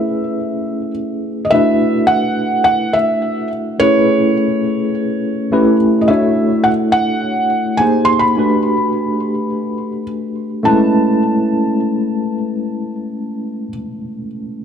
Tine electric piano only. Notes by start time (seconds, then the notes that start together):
Already playing: A3 C#4 E4 G#4 B4
1.52 A3 D4 E4 F#4 B4
3.80 A3 C#4 E4 G#4 B4
5.52 A3 C#4 E4 G4 B4
6.08 A3 D4 E4 F#4 C#5
7.80 A#3 D#4 G4 G#4 C5
8.37 A3 D4 F#4 G4 B4
10.63 G#3 A3 C#4 E4
10.68 B4